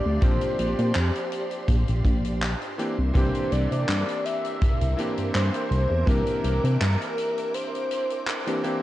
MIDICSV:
0, 0, Header, 1, 6, 480
1, 0, Start_track
1, 0, Tempo, 731707
1, 148, Time_signature, 4, 2, 24, 8
1, 5789, End_track
2, 0, Start_track
2, 0, Title_t, "String machine"
2, 0, Program_c, 0, 50
2, 0, Note_on_c, 0, 67, 87
2, 0, Note_on_c, 0, 74, 79
2, 0, Note_on_c, 0, 84, 90
2, 1802, Note_off_c, 0, 67, 0
2, 1802, Note_off_c, 0, 74, 0
2, 1828, Note_on_c, 0, 70, 82
2, 1828, Note_on_c, 0, 76, 73
2, 3722, Note_off_c, 0, 84, 0
2, 3747, Note_on_c, 0, 86, 92
2, 5789, Note_off_c, 0, 70, 0
2, 5789, Note_off_c, 0, 76, 0
2, 5789, Note_off_c, 0, 86, 0
2, 5789, End_track
3, 0, Start_track
3, 0, Title_t, "Soft synth lead"
3, 0, Program_c, 1, 80
3, 0, Note_on_c, 1, 74, 104
3, 150, Note_on_c, 1, 72, 96
3, 160, Note_off_c, 1, 74, 0
3, 1109, Note_off_c, 1, 72, 0
3, 2070, Note_on_c, 1, 72, 90
3, 2309, Note_on_c, 1, 74, 100
3, 2319, Note_off_c, 1, 72, 0
3, 2787, Note_on_c, 1, 76, 117
3, 2797, Note_off_c, 1, 74, 0
3, 3267, Note_off_c, 1, 76, 0
3, 3507, Note_on_c, 1, 72, 114
3, 3988, Note_on_c, 1, 70, 109
3, 3997, Note_off_c, 1, 72, 0
3, 4462, Note_off_c, 1, 70, 0
3, 4466, Note_on_c, 1, 70, 99
3, 4947, Note_on_c, 1, 72, 99
3, 4957, Note_off_c, 1, 70, 0
3, 5668, Note_off_c, 1, 72, 0
3, 5789, End_track
4, 0, Start_track
4, 0, Title_t, "Electric grand piano"
4, 0, Program_c, 2, 2
4, 0, Control_c, 2, 64, 127
4, 0, Note_on_c, 2, 53, 83
4, 0, Note_on_c, 2, 58, 75
4, 0, Note_on_c, 2, 60, 76
4, 0, Note_on_c, 2, 62, 78
4, 0, Note_on_c, 2, 67, 92
4, 116, Note_off_c, 2, 53, 0
4, 118, Note_off_c, 2, 58, 0
4, 120, Note_off_c, 2, 60, 0
4, 123, Note_off_c, 2, 62, 0
4, 125, Note_off_c, 2, 67, 0
4, 137, Note_on_c, 2, 53, 88
4, 141, Note_on_c, 2, 58, 78
4, 146, Note_on_c, 2, 60, 78
4, 151, Note_on_c, 2, 62, 79
4, 157, Note_on_c, 2, 67, 99
4, 1795, Note_off_c, 2, 53, 0
4, 1798, Note_off_c, 2, 58, 0
4, 1800, Note_off_c, 2, 60, 0
4, 1803, Note_off_c, 2, 62, 0
4, 1806, Note_off_c, 2, 67, 0
4, 1822, Note_on_c, 2, 52, 79
4, 1825, Note_on_c, 2, 58, 74
4, 1827, Note_on_c, 2, 60, 74
4, 1830, Note_on_c, 2, 62, 74
4, 1832, Note_on_c, 2, 67, 86
4, 1837, Control_c, 2, 64, 0
4, 1930, Note_off_c, 2, 52, 0
4, 1931, Note_off_c, 2, 58, 0
4, 1932, Note_off_c, 2, 60, 0
4, 1933, Note_off_c, 2, 62, 0
4, 1935, Note_off_c, 2, 67, 0
4, 1965, Control_c, 2, 64, 127
4, 2057, Note_on_c, 2, 52, 100
4, 2062, Note_on_c, 2, 58, 93
4, 2068, Note_on_c, 2, 60, 93
4, 2073, Note_on_c, 2, 62, 89
4, 2077, Note_on_c, 2, 67, 115
4, 3236, Note_off_c, 2, 52, 0
4, 3238, Note_off_c, 2, 58, 0
4, 3241, Note_off_c, 2, 60, 0
4, 3243, Note_off_c, 2, 62, 0
4, 3246, Note_off_c, 2, 67, 0
4, 3258, Note_on_c, 2, 52, 84
4, 3262, Note_on_c, 2, 58, 79
4, 3267, Note_on_c, 2, 60, 75
4, 3272, Note_on_c, 2, 62, 78
4, 3277, Note_on_c, 2, 67, 92
4, 3956, Note_off_c, 2, 52, 0
4, 3958, Note_off_c, 2, 58, 0
4, 3961, Note_off_c, 2, 60, 0
4, 3963, Note_off_c, 2, 62, 0
4, 3966, Note_off_c, 2, 67, 0
4, 3977, Note_on_c, 2, 52, 85
4, 3982, Note_on_c, 2, 58, 78
4, 3987, Note_on_c, 2, 60, 80
4, 3992, Note_on_c, 2, 62, 79
4, 3997, Note_on_c, 2, 67, 96
4, 5525, Note_off_c, 2, 52, 0
4, 5528, Note_off_c, 2, 58, 0
4, 5530, Note_off_c, 2, 60, 0
4, 5533, Note_off_c, 2, 62, 0
4, 5535, Note_off_c, 2, 67, 0
4, 5553, Note_on_c, 2, 52, 90
4, 5555, Note_on_c, 2, 58, 80
4, 5559, Note_on_c, 2, 60, 79
4, 5560, Note_on_c, 2, 62, 83
4, 5563, Note_on_c, 2, 67, 94
4, 5639, Note_off_c, 2, 52, 0
4, 5640, Note_off_c, 2, 58, 0
4, 5642, Note_off_c, 2, 60, 0
4, 5643, Note_off_c, 2, 62, 0
4, 5644, Note_off_c, 2, 67, 0
4, 5664, Note_on_c, 2, 52, 94
4, 5667, Note_on_c, 2, 58, 88
4, 5669, Note_on_c, 2, 60, 87
4, 5671, Note_on_c, 2, 62, 89
4, 5673, Note_on_c, 2, 67, 106
4, 5771, Note_off_c, 2, 52, 0
4, 5772, Note_off_c, 2, 58, 0
4, 5773, Note_off_c, 2, 60, 0
4, 5774, Note_off_c, 2, 62, 0
4, 5775, Note_off_c, 2, 67, 0
4, 5789, End_track
5, 0, Start_track
5, 0, Title_t, "Analog synth bass"
5, 0, Program_c, 3, 38
5, 36, Note_on_c, 3, 38, 99
5, 125, Note_off_c, 3, 38, 0
5, 146, Note_on_c, 3, 34, 100
5, 249, Note_off_c, 3, 34, 0
5, 389, Note_on_c, 3, 34, 94
5, 491, Note_off_c, 3, 34, 0
5, 517, Note_on_c, 3, 46, 97
5, 606, Note_off_c, 3, 46, 0
5, 628, Note_on_c, 3, 41, 94
5, 731, Note_off_c, 3, 41, 0
5, 1104, Note_on_c, 3, 34, 104
5, 1209, Note_off_c, 3, 34, 0
5, 1237, Note_on_c, 3, 34, 86
5, 1326, Note_off_c, 3, 34, 0
5, 1344, Note_on_c, 3, 34, 104
5, 1673, Note_off_c, 3, 34, 0
5, 1957, Note_on_c, 3, 36, 95
5, 2045, Note_off_c, 3, 36, 0
5, 2067, Note_on_c, 3, 36, 100
5, 2170, Note_off_c, 3, 36, 0
5, 2308, Note_on_c, 3, 36, 91
5, 2411, Note_off_c, 3, 36, 0
5, 2436, Note_on_c, 3, 48, 97
5, 2525, Note_off_c, 3, 48, 0
5, 2547, Note_on_c, 3, 43, 92
5, 2650, Note_off_c, 3, 43, 0
5, 3028, Note_on_c, 3, 36, 42
5, 3130, Note_off_c, 3, 36, 0
5, 3157, Note_on_c, 3, 36, 86
5, 3245, Note_off_c, 3, 36, 0
5, 3395, Note_on_c, 3, 43, 43
5, 3485, Note_off_c, 3, 43, 0
5, 3507, Note_on_c, 3, 43, 85
5, 3610, Note_off_c, 3, 43, 0
5, 3746, Note_on_c, 3, 36, 86
5, 3849, Note_off_c, 3, 36, 0
5, 3874, Note_on_c, 3, 40, 99
5, 3964, Note_off_c, 3, 40, 0
5, 3985, Note_on_c, 3, 36, 96
5, 4089, Note_off_c, 3, 36, 0
5, 4227, Note_on_c, 3, 36, 94
5, 4330, Note_off_c, 3, 36, 0
5, 4355, Note_on_c, 3, 48, 97
5, 4445, Note_off_c, 3, 48, 0
5, 4467, Note_on_c, 3, 43, 93
5, 4570, Note_off_c, 3, 43, 0
5, 5789, End_track
6, 0, Start_track
6, 0, Title_t, "Drums"
6, 143, Note_on_c, 9, 42, 91
6, 145, Note_on_c, 9, 36, 117
6, 208, Note_off_c, 9, 42, 0
6, 210, Note_off_c, 9, 36, 0
6, 269, Note_on_c, 9, 42, 57
6, 335, Note_off_c, 9, 42, 0
6, 386, Note_on_c, 9, 42, 70
6, 452, Note_off_c, 9, 42, 0
6, 517, Note_on_c, 9, 42, 51
6, 582, Note_off_c, 9, 42, 0
6, 620, Note_on_c, 9, 42, 87
6, 624, Note_on_c, 9, 39, 122
6, 686, Note_off_c, 9, 42, 0
6, 690, Note_off_c, 9, 39, 0
6, 758, Note_on_c, 9, 42, 52
6, 824, Note_off_c, 9, 42, 0
6, 866, Note_on_c, 9, 42, 79
6, 931, Note_off_c, 9, 42, 0
6, 991, Note_on_c, 9, 42, 50
6, 1056, Note_off_c, 9, 42, 0
6, 1105, Note_on_c, 9, 36, 102
6, 1105, Note_on_c, 9, 42, 95
6, 1170, Note_off_c, 9, 36, 0
6, 1171, Note_off_c, 9, 42, 0
6, 1234, Note_on_c, 9, 42, 52
6, 1300, Note_off_c, 9, 42, 0
6, 1343, Note_on_c, 9, 36, 91
6, 1346, Note_on_c, 9, 42, 72
6, 1409, Note_off_c, 9, 36, 0
6, 1412, Note_off_c, 9, 42, 0
6, 1473, Note_on_c, 9, 42, 58
6, 1539, Note_off_c, 9, 42, 0
6, 1589, Note_on_c, 9, 39, 104
6, 1590, Note_on_c, 9, 42, 98
6, 1654, Note_off_c, 9, 39, 0
6, 1655, Note_off_c, 9, 42, 0
6, 1715, Note_on_c, 9, 42, 53
6, 1781, Note_off_c, 9, 42, 0
6, 1830, Note_on_c, 9, 42, 59
6, 1896, Note_off_c, 9, 42, 0
6, 2067, Note_on_c, 9, 36, 121
6, 2067, Note_on_c, 9, 42, 104
6, 2132, Note_off_c, 9, 36, 0
6, 2133, Note_off_c, 9, 42, 0
6, 2195, Note_on_c, 9, 42, 53
6, 2260, Note_off_c, 9, 42, 0
6, 2308, Note_on_c, 9, 42, 73
6, 2373, Note_off_c, 9, 42, 0
6, 2439, Note_on_c, 9, 42, 55
6, 2505, Note_off_c, 9, 42, 0
6, 2545, Note_on_c, 9, 42, 106
6, 2549, Note_on_c, 9, 39, 118
6, 2611, Note_off_c, 9, 42, 0
6, 2615, Note_off_c, 9, 39, 0
6, 2679, Note_on_c, 9, 42, 52
6, 2745, Note_off_c, 9, 42, 0
6, 2790, Note_on_c, 9, 42, 80
6, 2855, Note_off_c, 9, 42, 0
6, 2914, Note_on_c, 9, 42, 58
6, 2980, Note_off_c, 9, 42, 0
6, 3026, Note_on_c, 9, 42, 97
6, 3028, Note_on_c, 9, 36, 109
6, 3091, Note_off_c, 9, 42, 0
6, 3093, Note_off_c, 9, 36, 0
6, 3155, Note_on_c, 9, 42, 58
6, 3220, Note_off_c, 9, 42, 0
6, 3269, Note_on_c, 9, 42, 76
6, 3335, Note_off_c, 9, 42, 0
6, 3395, Note_on_c, 9, 42, 53
6, 3460, Note_off_c, 9, 42, 0
6, 3510, Note_on_c, 9, 39, 108
6, 3510, Note_on_c, 9, 42, 98
6, 3575, Note_off_c, 9, 39, 0
6, 3576, Note_off_c, 9, 42, 0
6, 3634, Note_on_c, 9, 42, 52
6, 3700, Note_off_c, 9, 42, 0
6, 3750, Note_on_c, 9, 42, 59
6, 3816, Note_off_c, 9, 42, 0
6, 3985, Note_on_c, 9, 36, 114
6, 3990, Note_on_c, 9, 42, 101
6, 4050, Note_off_c, 9, 36, 0
6, 4056, Note_off_c, 9, 42, 0
6, 4112, Note_on_c, 9, 42, 58
6, 4178, Note_off_c, 9, 42, 0
6, 4227, Note_on_c, 9, 42, 79
6, 4292, Note_off_c, 9, 42, 0
6, 4361, Note_on_c, 9, 42, 58
6, 4426, Note_off_c, 9, 42, 0
6, 4472, Note_on_c, 9, 42, 92
6, 4473, Note_on_c, 9, 39, 120
6, 4537, Note_off_c, 9, 42, 0
6, 4538, Note_off_c, 9, 39, 0
6, 4602, Note_on_c, 9, 42, 56
6, 4668, Note_off_c, 9, 42, 0
6, 4709, Note_on_c, 9, 42, 75
6, 4775, Note_off_c, 9, 42, 0
6, 4839, Note_on_c, 9, 42, 50
6, 4904, Note_off_c, 9, 42, 0
6, 4946, Note_on_c, 9, 42, 93
6, 5012, Note_off_c, 9, 42, 0
6, 5083, Note_on_c, 9, 42, 56
6, 5149, Note_off_c, 9, 42, 0
6, 5188, Note_on_c, 9, 42, 81
6, 5254, Note_off_c, 9, 42, 0
6, 5316, Note_on_c, 9, 42, 52
6, 5381, Note_off_c, 9, 42, 0
6, 5427, Note_on_c, 9, 42, 103
6, 5428, Note_on_c, 9, 39, 106
6, 5492, Note_off_c, 9, 42, 0
6, 5494, Note_off_c, 9, 39, 0
6, 5559, Note_on_c, 9, 42, 58
6, 5624, Note_off_c, 9, 42, 0
6, 5669, Note_on_c, 9, 42, 54
6, 5735, Note_off_c, 9, 42, 0
6, 5789, End_track
0, 0, End_of_file